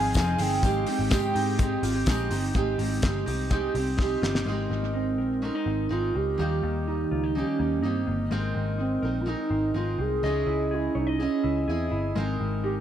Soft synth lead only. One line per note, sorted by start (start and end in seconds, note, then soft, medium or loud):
0.00 0.16 G#5 loud
0.17 0.42 G#5 loud
0.41 2.32 G5 loud
4.94 5.44 C4 medium
5.43 5.94 D#4 medium
5.92 6.17 F4 medium
6.16 6.87 G4 medium
6.88 7.38 D#4 medium
7.36 7.87 C#4 medium
7.86 8.21 C4 medium
8.80 9.22 C4 medium
9.21 9.30 F4 medium
9.29 9.78 D#4 medium
9.77 10.02 F4 medium
10.00 10.75 G#4 loud
10.74 10.99 E4 medium
10.98 11.21 D#4 medium
11.22 11.71 C#4 medium
11.70 12.05 C4 medium
12.64 12.75 G4 loud